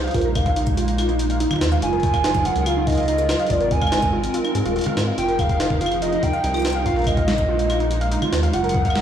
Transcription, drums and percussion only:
0.04 closed hi-hat
0.07 closed hi-hat
0.11 closed hi-hat
0.14 kick, closed hi-hat
0.18 closed hi-hat
0.21 closed hi-hat
0.35 kick, closed hi-hat, claves
0.46 kick, closed hi-hat
0.56 closed hi-hat
0.67 kick, cabasa
0.77 closed hi-hat
0.88 closed hi-hat
0.98 closed hi-hat, claves
1.09 closed hi-hat
1.19 closed hi-hat
1.30 closed hi-hat
1.40 closed hi-hat
1.51 closed hi-hat, mid tom, claves
1.53 mid tom
1.56 mid tom
1.59 snare, closed hi-hat, mid tom
1.61 mid tom
1.64 mid tom
1.67 mid tom
1.69 closed hi-hat, mid tom
1.82 closed hi-hat
1.93 closed hi-hat
2.00 closed hi-hat
2.03 kick, closed hi-hat
2.07 closed hi-hat
2.14 kick, closed hi-hat, claves
2.24 snare, closed hi-hat
2.35 kick, mid tom, cabasa
2.45 closed hi-hat
2.56 closed hi-hat
2.66 closed hi-hat, claves
2.87 kick, closed hi-hat
2.90 closed hi-hat
2.92 closed hi-hat
2.95 closed hi-hat
2.98 closed hi-hat
3.00 closed hi-hat
3.03 closed hi-hat
3.05 closed hi-hat
3.08 closed hi-hat
3.19 closed hi-hat, cabasa
3.29 snare, claves
3.39 closed hi-hat
3.47 closed hi-hat
3.50 kick, closed hi-hat
3.54 closed hi-hat
3.61 closed hi-hat
3.71 kick, closed hi-hat
3.82 kick, claves
3.87 claves
3.92 snare, closed hi-hat, claves
3.97 claves
4.02 kick, cabasa
4.24 closed hi-hat
4.34 closed hi-hat
4.45 closed hi-hat, claves
4.55 closed hi-hat
4.66 closed hi-hat
4.76 closed hi-hat
4.79 closed hi-hat
4.81 closed hi-hat
4.84 closed hi-hat
4.86 closed hi-hat, mid tom
4.97 snare, closed hi-hat, claves
5.18 closed hi-hat
5.28 closed hi-hat
5.39 kick, closed hi-hat, claves
5.49 kick, closed hi-hat
5.60 snare, closed hi-hat
5.70 kick, mid tom
5.81 closed hi-hat
5.86 claves
5.92 closed hi-hat
6.02 closed hi-hat
6.12 closed hi-hat
6.23 kick, closed hi-hat
6.33 closed hi-hat
6.44 closed hi-hat
6.54 closed hi-hat, cabasa, claves
6.57 cabasa
6.60 cabasa
6.62 snare, closed hi-hat, cabasa
6.65 cabasa
6.67 closed hi-hat, cabasa
6.70 cabasa
6.73 cabasa
6.86 kick, closed hi-hat
6.96 closed hi-hat
6.99 closed hi-hat
7.02 closed hi-hat
7.04 kick, closed hi-hat
7.07 closed hi-hat, claves
7.17 kick, closed hi-hat
7.28 snare, closed hi-hat
7.38 kick, cabasa
7.59 closed hi-hat
7.70 closed hi-hat, claves
7.80 closed hi-hat
7.91 closed hi-hat
8.01 closed hi-hat
8.12 closed hi-hat
8.22 closed hi-hat, mid tom, claves
8.33 snare, closed hi-hat
8.43 closed hi-hat
8.53 closed hi-hat
8.64 closed hi-hat
8.69 closed hi-hat
8.75 kick
8.85 kick, closed hi-hat
8.90 claves
8.95 snare, closed hi-hat

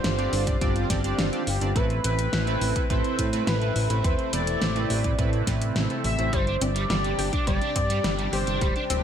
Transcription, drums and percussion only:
0.04 snare, closed hi-hat
0.19 closed hi-hat
0.33 open hi-hat
0.47 kick, closed hi-hat
0.61 kick, closed hi-hat
0.76 closed hi-hat
0.90 kick, snare, closed hi-hat
1.04 closed hi-hat
1.19 snare, closed hi-hat
1.33 closed hi-hat
1.47 open hi-hat
1.61 closed hi-hat
1.76 kick, closed hi-hat
1.90 closed hi-hat
2.04 closed hi-hat
2.19 closed hi-hat
2.33 snare, closed hi-hat
2.47 closed hi-hat
2.61 open hi-hat
2.76 kick, closed hi-hat
2.90 kick, closed hi-hat
3.04 closed hi-hat
3.19 kick, closed hi-hat
3.33 closed hi-hat
3.47 snare, closed hi-hat
3.62 closed hi-hat
3.76 open hi-hat
3.90 closed hi-hat
4.04 kick, closed hi-hat
4.19 closed hi-hat
4.33 closed hi-hat
4.47 closed hi-hat
4.62 snare, closed hi-hat
4.76 closed hi-hat
4.90 open hi-hat
5.04 kick, closed hi-hat
5.19 kick, closed hi-hat
5.33 closed hi-hat
5.47 kick, snare, closed hi-hat
5.62 closed hi-hat
5.76 snare, closed hi-hat
5.90 closed hi-hat
6.04 open hi-hat
6.19 closed hi-hat
6.33 kick, closed hi-hat
6.47 closed hi-hat
6.61 closed hi-hat
6.76 closed hi-hat
6.90 snare, closed hi-hat
7.04 closed hi-hat
7.19 open hi-hat
7.33 kick, closed hi-hat
7.47 kick, closed hi-hat
7.62 closed hi-hat
7.76 kick, closed hi-hat
7.90 closed hi-hat
8.04 snare, closed hi-hat
8.19 closed hi-hat
8.33 open hi-hat
8.47 closed hi-hat
8.61 kick, closed hi-hat
8.76 closed hi-hat
8.90 closed hi-hat

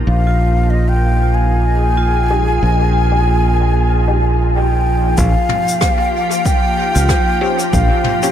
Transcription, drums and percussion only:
5.18 kick, shaker
5.49 mid tom
5.68 shaker
5.81 kick, cross-stick, shaker
6.31 shaker
6.46 kick, shaker
6.96 shaker
7.09 kick, cross-stick, shaker
7.59 shaker
7.73 kick, shaker
8.04 mid tom
8.23 shaker

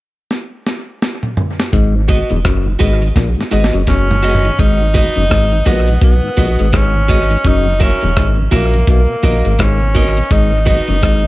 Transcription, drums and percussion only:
0.31 snare
0.67 snare
1.02 snare
1.23 mid tom
1.37 floor tom
1.60 snare
1.73 kick, closed hi-hat
2.09 kick, closed hi-hat
2.30 closed hi-hat
2.45 kick, cross-stick, closed hi-hat
2.80 kick, closed hi-hat
3.02 closed hi-hat
3.16 kick, snare, closed hi-hat
3.41 snare
3.51 closed hi-hat
3.64 snare
3.73 closed hi-hat
3.87 kick, snare, closed hi-hat
4.11 floor tom
4.23 closed hi-hat
4.35 floor tom
4.45 closed hi-hat
4.59 kick, closed hi-hat
4.95 kick, closed hi-hat
5.16 closed hi-hat
5.31 kick, cross-stick, closed hi-hat
5.66 kick, closed hi-hat
5.88 closed hi-hat
6.02 kick, closed hi-hat
6.37 kick, closed hi-hat
6.59 closed hi-hat
6.73 kick, cross-stick, closed hi-hat
7.08 kick, closed hi-hat
7.30 closed hi-hat
7.44 kick, closed hi-hat
7.80 kick, closed hi-hat
8.01 closed hi-hat
8.17 kick, cross-stick, closed hi-hat
8.52 kick, closed hi-hat
8.74 closed hi-hat
8.87 kick, closed hi-hat
9.23 kick, closed hi-hat
9.45 closed hi-hat
9.59 kick, cross-stick, closed hi-hat
9.95 kick, closed hi-hat
10.17 closed hi-hat
10.31 kick, closed hi-hat
10.67 kick, closed hi-hat
10.88 closed hi-hat
11.03 kick, cross-stick, closed hi-hat

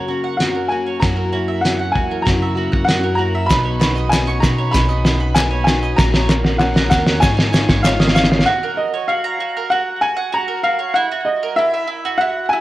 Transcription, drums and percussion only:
0.40 snare, closed hi-hat
1.02 kick, snare, closed hi-hat
1.65 snare, closed hi-hat
1.96 kick
2.27 kick, snare, closed hi-hat
2.73 kick
2.89 snare, closed hi-hat
3.50 kick, snare, closed hi-hat, shaker
3.81 snare, clap, shaker
3.97 shaker
4.13 snare, clap, closed hi-hat, shaker
4.29 shaker
4.43 kick, snare, shaker
4.74 kick, snare, closed hi-hat, shaker
4.90 shaker
5.05 snare, shaker
5.36 snare, clap, closed hi-hat, shaker
5.67 snare, shaker
5.83 shaker
5.98 kick, snare, shaker
6.14 snare
6.29 snare, clap, shaker
6.44 snare
6.59 snare, clap, shaker
6.76 snare, shaker
6.91 kick, snare, shaker
7.06 snare
7.22 kick, snare, shaker
7.39 snare
7.53 snare, shaker
7.69 kick, snare
7.84 snare, clap, shaker
8.00 snare
8.08 snare
8.16 snare, shaker
8.24 snare
8.31 snare, shaker
8.39 snare

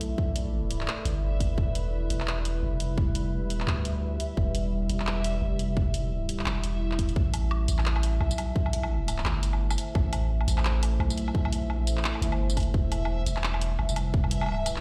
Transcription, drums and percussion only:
0.01 closed hi-hat
0.18 kick
0.36 closed hi-hat
0.71 closed hi-hat
0.81 clap
0.88 clap
1.05 closed hi-hat
1.40 kick, closed hi-hat
1.58 kick
1.75 closed hi-hat
2.10 closed hi-hat
2.20 clap
2.28 clap
2.45 closed hi-hat
2.80 closed hi-hat
2.98 kick
3.15 closed hi-hat
3.50 closed hi-hat
3.60 clap
3.68 clap
3.85 closed hi-hat
4.20 closed hi-hat
4.37 kick
4.55 closed hi-hat
4.90 closed hi-hat
5.00 clap
5.07 clap
5.24 closed hi-hat
5.59 closed hi-hat
5.77 kick
5.94 closed hi-hat
6.29 closed hi-hat
6.39 clap
6.46 clap
6.64 closed hi-hat
6.91 clap
6.99 kick, closed hi-hat
7.09 closed hi-hat
7.16 kick
7.34 closed hi-hat, low woodblock
7.51 low woodblock
7.68 closed hi-hat, tambourine
7.79 clap, low woodblock
7.86 clap
7.96 low woodblock
8.03 closed hi-hat
8.21 low woodblock
8.31 tambourine
8.38 closed hi-hat, low woodblock
8.56 kick
8.66 low woodblock
8.73 closed hi-hat
8.83 low woodblock
9.08 closed hi-hat, tambourine, low woodblock
9.18 clap
9.26 clap, low woodblock
9.43 closed hi-hat, tambourine
9.53 low woodblock
9.71 tambourine, low woodblock
9.78 closed hi-hat, tambourine
9.95 kick, low woodblock
10.13 closed hi-hat, low woodblock
10.41 low woodblock
10.48 closed hi-hat, tambourine
10.58 clap, low woodblock
10.65 clap
10.83 closed hi-hat, low woodblock
11.00 low woodblock
11.10 tambourine
11.18 closed hi-hat
11.28 low woodblock
11.35 kick
11.45 low woodblock
11.53 closed hi-hat
11.70 low woodblock
11.87 closed hi-hat, tambourine
11.97 clap
12.05 clap
12.15 low woodblock
12.22 closed hi-hat, tambourine
12.32 low woodblock
12.50 tambourine
12.57 kick, closed hi-hat, tambourine, low woodblock
12.60 closed hi-hat
12.63 closed hi-hat
12.74 kick
12.92 closed hi-hat, low woodblock
13.05 low woodblock
13.26 closed hi-hat, tambourine
13.37 clap, low woodblock
13.44 clap
13.54 low woodblock
13.61 closed hi-hat
13.79 low woodblock
13.89 tambourine
13.96 closed hi-hat, low woodblock
14.14 kick
14.24 low woodblock
14.31 closed hi-hat
14.41 low woodblock
14.43 low woodblock
14.46 low woodblock
14.49 low woodblock
14.52 low woodblock
14.54 low woodblock
14.66 closed hi-hat, tambourine, low woodblock
14.76 clap

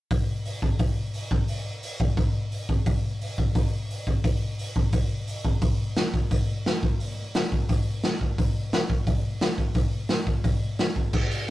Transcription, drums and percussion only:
0.11 kick, open hi-hat
0.45 open hi-hat
0.62 kick
0.79 kick, open hi-hat
1.14 open hi-hat
1.31 kick
1.48 open hi-hat
1.83 open hi-hat
2.00 kick
2.17 kick, open hi-hat
2.52 open hi-hat
2.69 kick
2.86 kick, open hi-hat
3.21 open hi-hat
3.38 kick
3.55 kick, open hi-hat
3.90 open hi-hat
4.07 kick
4.24 kick, open hi-hat
4.59 open hi-hat
4.76 kick
4.92 kick, open hi-hat
5.27 open hi-hat
5.45 kick
5.61 kick, open hi-hat
5.96 snare, open hi-hat
6.14 kick
6.31 kick, open hi-hat
6.66 snare, open hi-hat
6.83 kick
7.00 open hi-hat
7.34 snare, open hi-hat
7.52 kick
7.69 kick, open hi-hat
8.03 snare, open hi-hat
8.21 kick
8.38 kick, open hi-hat
8.73 snare, open hi-hat
8.90 kick
9.07 kick, open hi-hat
9.41 snare, open hi-hat
9.58 kick
9.74 kick, open hi-hat
10.09 snare, open hi-hat
10.27 kick
10.44 kick, open hi-hat
10.79 snare, open hi-hat
10.96 kick
11.13 kick, crash
11.31 open hi-hat

